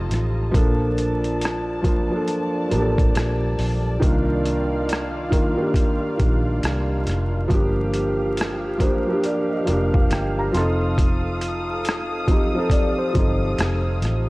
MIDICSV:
0, 0, Header, 1, 6, 480
1, 0, Start_track
1, 0, Tempo, 869565
1, 301, Time_signature, 4, 2, 24, 8
1, 7888, End_track
2, 0, Start_track
2, 0, Title_t, "String section"
2, 0, Program_c, 0, 48
2, 0, Note_on_c, 0, 65, 73
2, 0, Note_on_c, 0, 75, 66
2, 0, Note_on_c, 0, 81, 76
2, 278, Note_off_c, 0, 65, 0
2, 278, Note_off_c, 0, 81, 0
2, 279, Note_off_c, 0, 75, 0
2, 297, Note_on_c, 0, 74, 64
2, 298, Note_on_c, 0, 81, 73
2, 2200, Note_off_c, 0, 81, 0
2, 2217, Note_on_c, 0, 77, 63
2, 2220, Note_on_c, 0, 65, 66
2, 4117, Note_off_c, 0, 74, 0
2, 4120, Note_off_c, 0, 77, 0
2, 4121, Note_off_c, 0, 65, 0
2, 4141, Note_on_c, 0, 67, 79
2, 4142, Note_on_c, 0, 77, 62
2, 5804, Note_off_c, 0, 67, 0
2, 5822, Note_on_c, 0, 69, 70
2, 5824, Note_on_c, 0, 87, 81
2, 7888, Note_off_c, 0, 69, 0
2, 7888, Note_off_c, 0, 77, 0
2, 7888, Note_off_c, 0, 87, 0
2, 7888, End_track
3, 0, Start_track
3, 0, Title_t, "Tine electric piano"
3, 0, Program_c, 1, 4
3, 6930, Note_on_c, 1, 72, 70
3, 7018, Note_off_c, 1, 72, 0
3, 7022, Note_on_c, 1, 74, 78
3, 7160, Note_off_c, 1, 74, 0
3, 7168, Note_on_c, 1, 72, 85
3, 7865, Note_off_c, 1, 72, 0
3, 7888, End_track
4, 0, Start_track
4, 0, Title_t, "Felt piano"
4, 0, Program_c, 2, 0
4, 0, Control_c, 2, 64, 127
4, 0, Note_on_c, 2, 53, 79
4, 0, Note_on_c, 2, 60, 66
4, 0, Note_on_c, 2, 63, 67
4, 0, Note_on_c, 2, 67, 83
4, 0, Note_on_c, 2, 69, 80
4, 143, Note_off_c, 2, 53, 0
4, 148, Note_off_c, 2, 60, 0
4, 153, Note_off_c, 2, 63, 0
4, 159, Note_off_c, 2, 69, 0
4, 285, Note_on_c, 2, 53, 110
4, 297, Note_on_c, 2, 58, 78
4, 307, Note_on_c, 2, 62, 94
4, 309, Control_c, 2, 64, 0
4, 312, Note_off_c, 2, 67, 0
4, 317, Note_on_c, 2, 69, 92
4, 405, Control_c, 2, 64, 127
4, 864, Note_off_c, 2, 53, 0
4, 870, Note_off_c, 2, 58, 0
4, 875, Note_off_c, 2, 62, 0
4, 881, Note_off_c, 2, 69, 0
4, 1003, Note_on_c, 2, 53, 87
4, 1014, Note_on_c, 2, 58, 72
4, 1025, Note_on_c, 2, 62, 69
4, 1034, Note_on_c, 2, 65, 88
4, 1124, Note_off_c, 2, 53, 0
4, 1130, Note_off_c, 2, 58, 0
4, 1135, Note_off_c, 2, 62, 0
4, 1140, Note_off_c, 2, 65, 0
4, 1157, Note_on_c, 2, 53, 80
4, 1168, Note_on_c, 2, 58, 68
4, 1180, Note_on_c, 2, 62, 74
4, 1189, Note_on_c, 2, 69, 87
4, 1432, Note_off_c, 2, 53, 0
4, 1437, Note_off_c, 2, 58, 0
4, 1443, Note_off_c, 2, 62, 0
4, 1448, Note_off_c, 2, 69, 0
4, 1484, Note_on_c, 2, 53, 74
4, 1495, Note_on_c, 2, 58, 73
4, 1506, Note_on_c, 2, 62, 73
4, 1517, Note_on_c, 2, 67, 69
4, 1551, Note_on_c, 2, 69, 76
4, 1553, Note_off_c, 2, 67, 0
4, 2064, Note_off_c, 2, 53, 0
4, 2069, Note_off_c, 2, 58, 0
4, 2075, Note_off_c, 2, 62, 0
4, 2097, Note_off_c, 2, 69, 0
4, 2207, Note_on_c, 2, 51, 101
4, 2218, Note_on_c, 2, 58, 92
4, 2228, Note_on_c, 2, 62, 88
4, 2229, Control_c, 2, 64, 0
4, 2240, Note_on_c, 2, 65, 97
4, 2339, Control_c, 2, 64, 127
4, 2786, Note_off_c, 2, 51, 0
4, 2791, Note_off_c, 2, 58, 0
4, 2796, Note_off_c, 2, 62, 0
4, 2802, Note_off_c, 2, 65, 0
4, 2929, Note_on_c, 2, 51, 89
4, 2940, Note_on_c, 2, 58, 76
4, 2952, Note_on_c, 2, 62, 67
4, 2964, Note_on_c, 2, 65, 93
4, 3047, Note_off_c, 2, 51, 0
4, 3053, Note_off_c, 2, 58, 0
4, 3059, Note_off_c, 2, 62, 0
4, 3065, Note_off_c, 2, 65, 0
4, 3070, Note_on_c, 2, 51, 76
4, 3080, Note_on_c, 2, 58, 72
4, 3091, Note_on_c, 2, 62, 74
4, 3102, Note_on_c, 2, 67, 84
4, 3348, Note_off_c, 2, 51, 0
4, 3353, Note_off_c, 2, 58, 0
4, 3358, Note_off_c, 2, 62, 0
4, 3364, Note_off_c, 2, 67, 0
4, 3408, Note_on_c, 2, 51, 65
4, 3419, Note_on_c, 2, 58, 67
4, 3430, Note_on_c, 2, 62, 68
4, 3440, Note_on_c, 2, 65, 72
4, 3986, Note_off_c, 2, 51, 0
4, 3991, Note_off_c, 2, 58, 0
4, 3997, Note_off_c, 2, 62, 0
4, 4002, Note_off_c, 2, 65, 0
4, 4128, Note_on_c, 2, 53, 100
4, 4138, Note_on_c, 2, 58, 78
4, 4149, Control_c, 2, 64, 0
4, 4150, Note_on_c, 2, 62, 83
4, 4161, Note_on_c, 2, 67, 113
4, 4228, Control_c, 2, 64, 127
4, 4706, Note_off_c, 2, 53, 0
4, 4711, Note_off_c, 2, 58, 0
4, 4717, Note_off_c, 2, 62, 0
4, 4723, Note_off_c, 2, 67, 0
4, 4844, Note_on_c, 2, 53, 85
4, 4856, Note_on_c, 2, 58, 87
4, 4862, Note_on_c, 2, 72, 77
4, 4865, Note_on_c, 2, 62, 77
4, 4877, Note_on_c, 2, 67, 94
4, 4965, Note_off_c, 2, 53, 0
4, 4971, Note_off_c, 2, 58, 0
4, 4975, Note_off_c, 2, 62, 0
4, 4981, Note_off_c, 2, 67, 0
4, 5003, Note_on_c, 2, 53, 79
4, 5016, Note_on_c, 2, 58, 71
4, 5025, Note_on_c, 2, 62, 69
4, 5035, Note_on_c, 2, 67, 97
4, 5085, Note_off_c, 2, 72, 0
4, 5105, Note_on_c, 2, 74, 72
4, 5239, Note_off_c, 2, 74, 0
4, 5254, Note_on_c, 2, 75, 65
4, 5275, Note_off_c, 2, 53, 0
4, 5281, Note_off_c, 2, 58, 0
4, 5286, Note_off_c, 2, 62, 0
4, 5291, Note_off_c, 2, 67, 0
4, 5326, Note_on_c, 2, 53, 76
4, 5337, Note_on_c, 2, 58, 65
4, 5348, Note_on_c, 2, 62, 69
4, 5358, Note_on_c, 2, 67, 81
4, 5474, Note_off_c, 2, 75, 0
4, 5489, Note_on_c, 2, 77, 71
4, 5576, Note_off_c, 2, 77, 0
4, 5583, Note_on_c, 2, 79, 66
4, 5718, Note_off_c, 2, 79, 0
4, 5734, Note_on_c, 2, 82, 67
4, 5797, Note_off_c, 2, 53, 0
4, 5805, Note_on_c, 2, 53, 95
4, 5818, Note_off_c, 2, 82, 0
4, 5818, Note_on_c, 2, 60, 84
4, 5819, Note_off_c, 2, 58, 0
4, 5821, Note_on_c, 2, 84, 78
4, 5825, Note_off_c, 2, 62, 0
4, 5827, Note_on_c, 2, 63, 84
4, 5829, Control_c, 2, 64, 0
4, 5830, Note_off_c, 2, 67, 0
4, 5839, Note_on_c, 2, 69, 100
4, 5932, Control_c, 2, 64, 127
4, 6044, Note_off_c, 2, 84, 0
4, 6591, Note_off_c, 2, 53, 0
4, 6598, Note_off_c, 2, 60, 0
4, 6602, Note_off_c, 2, 63, 0
4, 6608, Note_off_c, 2, 69, 0
4, 6773, Note_on_c, 2, 53, 75
4, 6782, Note_on_c, 2, 60, 72
4, 6794, Note_on_c, 2, 63, 81
4, 6803, Note_on_c, 2, 67, 88
4, 6889, Note_off_c, 2, 53, 0
4, 6894, Note_off_c, 2, 60, 0
4, 6900, Note_off_c, 2, 63, 0
4, 6904, Note_off_c, 2, 67, 0
4, 6915, Note_on_c, 2, 53, 75
4, 6928, Note_on_c, 2, 60, 72
4, 6938, Note_on_c, 2, 63, 67
4, 6948, Note_on_c, 2, 69, 88
4, 7191, Note_off_c, 2, 53, 0
4, 7197, Note_off_c, 2, 60, 0
4, 7202, Note_off_c, 2, 63, 0
4, 7207, Note_off_c, 2, 69, 0
4, 7247, Note_on_c, 2, 53, 81
4, 7259, Note_on_c, 2, 60, 67
4, 7271, Note_on_c, 2, 63, 72
4, 7282, Note_on_c, 2, 69, 78
4, 7826, Note_off_c, 2, 53, 0
4, 7831, Note_off_c, 2, 60, 0
4, 7837, Note_off_c, 2, 63, 0
4, 7843, Note_off_c, 2, 69, 0
4, 7888, End_track
5, 0, Start_track
5, 0, Title_t, "Fingered electric bass"
5, 0, Program_c, 3, 33
5, 58, Note_on_c, 3, 33, 89
5, 284, Note_off_c, 3, 33, 0
5, 300, Note_on_c, 3, 34, 103
5, 1144, Note_off_c, 3, 34, 0
5, 1502, Note_on_c, 3, 33, 81
5, 1726, Note_off_c, 3, 33, 0
5, 1743, Note_on_c, 3, 34, 103
5, 1967, Note_off_c, 3, 34, 0
5, 1983, Note_on_c, 3, 34, 105
5, 2207, Note_off_c, 3, 34, 0
5, 2221, Note_on_c, 3, 36, 108
5, 3065, Note_off_c, 3, 36, 0
5, 3420, Note_on_c, 3, 34, 103
5, 3646, Note_off_c, 3, 34, 0
5, 3663, Note_on_c, 3, 36, 101
5, 3887, Note_off_c, 3, 36, 0
5, 3903, Note_on_c, 3, 29, 99
5, 4127, Note_off_c, 3, 29, 0
5, 4141, Note_on_c, 3, 31, 108
5, 4985, Note_off_c, 3, 31, 0
5, 5345, Note_on_c, 3, 29, 89
5, 5568, Note_off_c, 3, 29, 0
5, 5583, Note_on_c, 3, 31, 90
5, 5807, Note_off_c, 3, 31, 0
5, 5822, Note_on_c, 3, 29, 110
5, 6905, Note_off_c, 3, 29, 0
5, 7260, Note_on_c, 3, 31, 103
5, 7486, Note_off_c, 3, 31, 0
5, 7499, Note_on_c, 3, 29, 101
5, 7725, Note_off_c, 3, 29, 0
5, 7739, Note_on_c, 3, 33, 94
5, 7888, Note_off_c, 3, 33, 0
5, 7888, End_track
6, 0, Start_track
6, 0, Title_t, "Drums"
6, 61, Note_on_c, 9, 42, 67
6, 76, Note_on_c, 9, 37, 32
6, 116, Note_off_c, 9, 42, 0
6, 131, Note_off_c, 9, 37, 0
6, 300, Note_on_c, 9, 36, 109
6, 302, Note_on_c, 9, 42, 76
6, 355, Note_off_c, 9, 36, 0
6, 357, Note_off_c, 9, 42, 0
6, 541, Note_on_c, 9, 42, 63
6, 596, Note_off_c, 9, 42, 0
6, 685, Note_on_c, 9, 42, 33
6, 741, Note_off_c, 9, 42, 0
6, 780, Note_on_c, 9, 42, 89
6, 802, Note_on_c, 9, 37, 117
6, 836, Note_off_c, 9, 42, 0
6, 857, Note_off_c, 9, 37, 0
6, 1017, Note_on_c, 9, 36, 87
6, 1020, Note_on_c, 9, 42, 65
6, 1072, Note_off_c, 9, 36, 0
6, 1075, Note_off_c, 9, 42, 0
6, 1257, Note_on_c, 9, 42, 65
6, 1312, Note_off_c, 9, 42, 0
6, 1498, Note_on_c, 9, 42, 65
6, 1553, Note_off_c, 9, 42, 0
6, 1646, Note_on_c, 9, 36, 104
6, 1652, Note_on_c, 9, 42, 36
6, 1701, Note_off_c, 9, 36, 0
6, 1707, Note_off_c, 9, 42, 0
6, 1740, Note_on_c, 9, 42, 83
6, 1751, Note_on_c, 9, 37, 110
6, 1795, Note_off_c, 9, 42, 0
6, 1806, Note_off_c, 9, 37, 0
6, 1981, Note_on_c, 9, 46, 44
6, 2036, Note_off_c, 9, 46, 0
6, 2221, Note_on_c, 9, 36, 101
6, 2223, Note_on_c, 9, 42, 86
6, 2276, Note_off_c, 9, 36, 0
6, 2278, Note_off_c, 9, 42, 0
6, 2459, Note_on_c, 9, 42, 66
6, 2514, Note_off_c, 9, 42, 0
6, 2699, Note_on_c, 9, 42, 84
6, 2720, Note_on_c, 9, 37, 118
6, 2754, Note_off_c, 9, 42, 0
6, 2775, Note_off_c, 9, 37, 0
6, 2938, Note_on_c, 9, 36, 81
6, 2940, Note_on_c, 9, 42, 73
6, 2993, Note_off_c, 9, 36, 0
6, 2995, Note_off_c, 9, 42, 0
6, 3170, Note_on_c, 9, 36, 91
6, 3178, Note_on_c, 9, 42, 73
6, 3225, Note_off_c, 9, 36, 0
6, 3233, Note_off_c, 9, 42, 0
6, 3420, Note_on_c, 9, 36, 94
6, 3420, Note_on_c, 9, 42, 61
6, 3475, Note_off_c, 9, 36, 0
6, 3475, Note_off_c, 9, 42, 0
6, 3660, Note_on_c, 9, 42, 76
6, 3672, Note_on_c, 9, 37, 127
6, 3716, Note_off_c, 9, 42, 0
6, 3727, Note_off_c, 9, 37, 0
6, 3901, Note_on_c, 9, 42, 64
6, 3917, Note_on_c, 9, 37, 35
6, 3957, Note_off_c, 9, 42, 0
6, 3972, Note_off_c, 9, 37, 0
6, 4141, Note_on_c, 9, 36, 119
6, 4144, Note_on_c, 9, 42, 77
6, 4196, Note_off_c, 9, 36, 0
6, 4199, Note_off_c, 9, 42, 0
6, 4380, Note_on_c, 9, 42, 66
6, 4436, Note_off_c, 9, 42, 0
6, 4621, Note_on_c, 9, 42, 89
6, 4642, Note_on_c, 9, 37, 121
6, 4677, Note_off_c, 9, 42, 0
6, 4698, Note_off_c, 9, 37, 0
6, 4858, Note_on_c, 9, 36, 80
6, 4860, Note_on_c, 9, 42, 67
6, 4913, Note_off_c, 9, 36, 0
6, 4915, Note_off_c, 9, 42, 0
6, 5098, Note_on_c, 9, 42, 65
6, 5154, Note_off_c, 9, 42, 0
6, 5339, Note_on_c, 9, 42, 65
6, 5394, Note_off_c, 9, 42, 0
6, 5487, Note_on_c, 9, 36, 102
6, 5542, Note_off_c, 9, 36, 0
6, 5578, Note_on_c, 9, 42, 82
6, 5590, Note_on_c, 9, 37, 116
6, 5634, Note_off_c, 9, 42, 0
6, 5645, Note_off_c, 9, 37, 0
6, 5821, Note_on_c, 9, 42, 72
6, 5836, Note_on_c, 9, 37, 35
6, 5876, Note_off_c, 9, 42, 0
6, 5891, Note_off_c, 9, 37, 0
6, 6061, Note_on_c, 9, 36, 113
6, 6064, Note_on_c, 9, 42, 80
6, 6116, Note_off_c, 9, 36, 0
6, 6120, Note_off_c, 9, 42, 0
6, 6300, Note_on_c, 9, 42, 70
6, 6356, Note_off_c, 9, 42, 0
6, 6540, Note_on_c, 9, 42, 99
6, 6561, Note_on_c, 9, 37, 119
6, 6595, Note_off_c, 9, 42, 0
6, 6616, Note_off_c, 9, 37, 0
6, 6777, Note_on_c, 9, 36, 97
6, 6779, Note_on_c, 9, 42, 64
6, 6832, Note_off_c, 9, 36, 0
6, 6834, Note_off_c, 9, 42, 0
6, 7009, Note_on_c, 9, 36, 92
6, 7017, Note_on_c, 9, 42, 73
6, 7064, Note_off_c, 9, 36, 0
6, 7072, Note_off_c, 9, 42, 0
6, 7259, Note_on_c, 9, 42, 69
6, 7260, Note_on_c, 9, 36, 97
6, 7314, Note_off_c, 9, 42, 0
6, 7315, Note_off_c, 9, 36, 0
6, 7498, Note_on_c, 9, 42, 83
6, 7510, Note_on_c, 9, 37, 112
6, 7554, Note_off_c, 9, 42, 0
6, 7565, Note_off_c, 9, 37, 0
6, 7740, Note_on_c, 9, 42, 66
6, 7756, Note_on_c, 9, 37, 39
6, 7796, Note_off_c, 9, 42, 0
6, 7811, Note_off_c, 9, 37, 0
6, 7888, End_track
0, 0, End_of_file